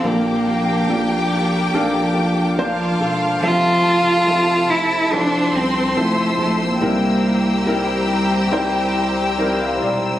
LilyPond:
<<
  \new Staff \with { instrumentName = "String section" } { \time 4/4 \key f \major \tempo 4 = 71 << { <bes d'''>1 | <c'' e'''>1~ | <c'' e'''>1 | } \\ { a''1~ | a''1 | <g'' bes''>1 | } >> }
  \new Staff \with { instrumentName = "Violin section" } { \time 4/4 \key f \major <g' g''>2. <f' f''>4 | <a' a''>2 <c'' c'''>2 | <g' g''>1 | }
  \new Staff \with { instrumentName = "Nylon-string guitar" } { \time 4/4 \key f \major bes8 f'8 d'8 f'8 a'8 f'8 d'8 a'8 | f8 e'8 c'8 e'8 a'8 e'8 c'8 a'8 | c8 e'8 c'8 e'8 bes'8 e'8 c'8 bes'8 | }
  \new Staff \with { instrumentName = "Grand piano" } { \time 4/4 \key f \major << { bes,4. r2 r8 | c4. r2 r8 | g,4. r4. g''16 f''16 d''8 | } \\ { <f bes d' a'>4 <f bes d' a'>4 <f bes d' f'>4 <f bes d' c''>4 | <f c' a' e''>4 <f c' a' e''>4 <f c' e' a'>4 <f c' e' a'>4 | <g c' e' bes'>4 <g c' e' bes'>4 <g c' e' c''>4 <g c' e' bes'>4 | } >> }
  \new Staff \with { instrumentName = "Cello" } { \time 4/4 \key f \major bes2 r2 | f'4. e'8 d'8 c'8 a8 a16 bes16~ | bes4.~ bes16 r2 r16 | }
  \new Staff \with { instrumentName = "Sub bass" } { \clef bass \time 4/4 \key f \major bes,,4 bes,,4 bes,,4. e,,8 | f,,8. f,,8. f,,4 c,8 f,,8 bes,,8 | c,4 c,4 c,4. e,,8 | }
>>